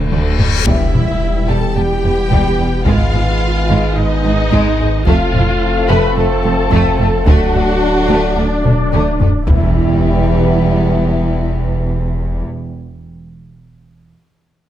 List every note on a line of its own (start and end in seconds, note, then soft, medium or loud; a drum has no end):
0.00 0.66 D1 loud
0.00 0.34 D3 medium
0.00 0.35 A3 medium
0.00 0.38 A4 medium
0.00 0.11 F#6 loud
0.00 reverse cymbal medium
0.12 0.60 D2 medium
0.12 0.21 A4 medium
0.12 0.20 D5 medium
0.12 taiko mid medium
0.39 0.48 A4 medium
0.39 0.49 D5 medium
0.39 taiko low loud
0.65 2.88 E1 medium
0.65 0.75 E1 loud
0.65 0.74 E2 medium
0.65 2.82 E3 medium
0.65 0.91 G3 medium
0.65 2.83 G3 medium
0.65 5.02 B3 medium
0.65 5.03 B3 medium
0.65 1.45 E4 medium
0.65 2.83 G4 medium
0.65 1.45 E5 loud
0.65 taiko loud
0.65 impact medium
0.93 1.03 E1 medium
0.93 1.01 E2 medium
0.93 1.03 G3 medium
0.93 taiko low-mid medium
1.47 1.57 E1 medium
1.47 1.56 E2 medium
1.47 1.74 G3 medium
1.47 1.76 A4 medium
1.47 1.76 A5 loud
1.76 1.85 E1 medium
1.76 1.85 E2 medium
1.76 1.85 G3 medium
1.76 2.86 G4 medium
1.76 2.87 G5 loud
2.04 2.12 E1 medium
2.04 2.12 E2 medium
2.04 2.12 G3 medium
2.31 2.39 E1 medium
2.31 2.40 E2 medium
2.31 2.58 G3 medium
2.31 taiko medium
2.59 2.67 E1 medium
2.59 2.67 E2 medium
2.59 2.67 G3 medium
2.85 5.08 G#1 medium
2.85 2.95 G#1 loud
2.85 2.93 G#2 loud
2.85 5.02 D#3 medium
2.85 3.12 G#3 medium
2.85 5.03 G#3 medium
2.85 3.94 F4 loud
2.85 5.06 B4 medium
2.85 3.94 F5 loud
2.85 taiko loud
3.14 3.22 G#1 medium
3.14 3.22 G#2 medium
3.14 3.22 G#3 medium
3.14 taiko low-mid medium
3.68 3.76 G#1 loud
3.68 3.77 G#2 medium
3.68 3.94 G#3 medium
3.96 4.05 G#1 medium
3.96 4.04 G#2 medium
3.96 4.06 G#3 medium
3.96 5.06 D#4 loud
3.96 5.06 D#5 loud
4.24 4.32 G#1 medium
4.24 4.32 G#2 medium
4.24 4.33 G#3 medium
4.52 4.60 G#1 loud
4.52 4.60 G#2 loud
4.52 4.78 G#3 loud
4.52 taiko medium
4.79 4.87 G#1 medium
4.79 4.88 G#2 medium
4.79 4.88 G#3 medium
5.06 7.28 F1 loud
5.06 5.15 F1 loud
5.06 5.15 F2 loud
5.06 7.26 F3 loud
5.06 9.15 A3 medium
5.06 5.32 A3 loud
5.06 7.23 C4 loud
5.06 5.88 F4 loud
5.06 9.16 A4 loud
5.06 5.88 F5 loud
5.06 taiko loud
5.34 5.42 F1 medium
5.34 5.43 F2 medium
5.34 5.43 A3 medium
5.34 taiko low-mid medium
5.88 5.97 F1 loud
5.88 5.98 F2 loud
5.88 6.14 A3 loud
5.88 6.17 B4 loud
5.88 6.16 B5 loud
6.16 6.25 F1 medium
6.16 6.25 F2 medium
6.16 6.26 A3 medium
6.16 7.25 A4 loud
6.16 7.27 A5 loud
6.44 6.52 F1 medium
6.44 6.52 F2 medium
6.44 6.54 A3 medium
6.71 6.79 F1 loud
6.71 6.80 F2 loud
6.71 6.98 A3 loud
6.71 taiko medium
6.99 7.07 F1 medium
6.99 7.08 F2 medium
6.99 7.09 A3 medium
7.26 9.46 D1 loud
7.26 7.34 D2 loud
7.26 7.35 D2 loud
7.26 9.15 F#3 loud
7.26 7.53 A3 loud
7.26 9.27 D4 loud
7.26 9.20 D4 loud
7.26 8.38 F#4 loud
7.26 8.37 F#5 loud
7.26 taiko loud
7.54 7.62 D2 medium
7.54 7.63 D2 medium
7.54 7.64 A3 medium
7.54 taiko low-mid medium
8.09 8.17 D2 loud
8.09 8.18 D2 loud
8.09 8.35 A3 loud
8.36 8.44 D2 medium
8.36 8.45 D2 medium
8.36 8.46 A3 medium
8.36 9.47 D4 loud
8.36 9.47 D5 loud
8.65 8.73 D2 medium
8.65 8.74 A3 medium
8.65 taiko low-mid medium
8.92 9.00 D2 medium
8.92 9.01 D2 loud
8.92 9.18 A3 medium
8.92 taiko mid medium
9.20 9.28 D2 medium
9.20 9.28 A3 medium
9.20 taiko low loud
9.47 12.43 E1 medium
9.47 12.43 E2 medium
9.47 12.43 E3 medium
9.47 12.43 G3 medium
9.47 12.44 G3 medium
9.47 12.43 B3 medium
9.47 12.44 B3 medium
9.47 12.43 E4 loud
9.47 12.44 B4 loud
9.47 12.43 E5 loud
9.47 taiko loud
9.47 impact loud